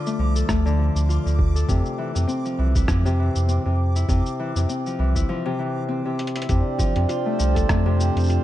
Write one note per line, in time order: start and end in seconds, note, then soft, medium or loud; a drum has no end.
0.00 0.64 D3 medium
0.00 1.08 F4 medium
0.00 0.35 A4 medium
0.00 5.29 D6 medium
0.06 0.48 A3 medium
0.06 cabasa soft
0.19 0.44 C2 medium
0.19 0.69 F3 medium
0.36 1.55 A4 medium
0.36 cabasa medium
0.48 0.90 D2 medium
0.48 3.81 A3 medium
0.48 kick loud
0.48 cross-stick medium
0.48 cabasa medium
0.66 1.24 D3 loud
0.66 cabasa soft
0.78 1.29 F3 medium
0.95 1.19 D2 medium
0.95 cabasa medium
1.09 2.04 F4 medium
1.09 cabasa soft
1.26 1.65 D2 medium
1.26 1.74 D3 medium
1.26 cabasa soft
1.39 kick loud
1.55 3.75 A4 medium
1.55 cabasa medium
1.69 1.82 F2 medium
1.69 2.14 C3 medium
1.69 kick loud
1.69 cabasa medium
1.86 cabasa soft
1.98 2.19 E3 medium
2.15 2.26 F2 medium
2.15 3.04 C3 medium
2.15 cabasa medium
2.27 3.48 C4 medium
2.27 cabasa medium
2.45 2.87 F3 medium
2.45 cabasa soft
2.58 2.84 C2 medium
2.58 3.09 E3 medium
2.75 2.94 E4 medium
2.75 kick medium
2.75 cabasa medium
2.88 3.30 F2 medium
2.88 3.09 F3 loud
2.88 kick loud
2.88 cross-stick medium
2.88 cabasa medium
3.05 3.64 C3 loud
3.05 cabasa soft
3.19 3.69 E3 medium
3.35 3.59 F2 medium
3.35 cabasa medium
3.48 4.68 C4 medium
3.48 cabasa medium
3.66 4.05 F2 medium
3.66 4.07 C3 medium
3.96 4.92 E4 medium
3.96 cabasa medium
4.09 4.22 F2 loud
4.09 4.55 C3 medium
4.09 kick loud
4.09 cabasa soft
4.26 cabasa soft
4.39 4.59 E3 medium
4.56 4.66 F2 medium
4.56 5.44 C3 medium
4.56 cabasa medium
4.69 5.88 C4 medium
4.69 cabasa medium
4.86 5.28 F3 medium
4.86 cabasa soft
4.99 5.24 C2 medium
4.99 5.49 E3 medium
5.15 5.35 E4 medium
5.15 kick medium
5.15 cabasa medium
5.29 5.49 F3 medium
5.46 6.04 C3 loud
5.59 6.09 E3 medium
5.89 8.44 C4 medium
6.05 6.48 C3 medium
6.19 closed hi-hat medium
6.27 closed hi-hat medium
6.36 6.84 E4 medium
6.36 closed hi-hat medium
6.42 closed hi-hat medium
6.49 6.63 F2 loud
6.49 6.94 C3 medium
6.49 8.44 C4 medium
6.49 kick loud
6.49 closed hi-hat soft
6.49 cabasa soft
6.59 8.44 D4 medium
6.77 6.99 F3 medium
6.77 8.44 G4 medium
6.77 kick loud
6.77 cabasa medium
6.96 7.06 F2 medium
6.96 7.85 C3 medium
6.96 closed hi-hat medium
7.09 8.28 F4 medium
7.09 closed hi-hat soft
7.09 cabasa soft
7.26 7.68 A3 medium
7.30 8.44 C5 medium
7.39 7.64 C2 medium
7.39 7.89 F3 medium
7.39 cabasa medium
7.55 8.44 A4 medium
7.55 kick medium
7.55 closed hi-hat medium
7.55 cabasa soft
7.69 8.11 F2 medium
7.69 8.44 A3 medium
7.69 kick loud
7.69 cross-stick medium
7.69 closed hi-hat soft
7.69 cabasa soft
7.86 8.44 C3 loud
7.99 8.44 F3 medium
7.99 cabasa medium
8.16 8.39 F2 medium
8.16 closed hi-hat medium
8.16 cabasa soft
8.19 cabasa soft
8.24 cabasa soft
8.26 cabasa soft
8.28 8.44 F4 medium
8.28 closed hi-hat soft
8.28 cabasa soft
8.30 cabasa soft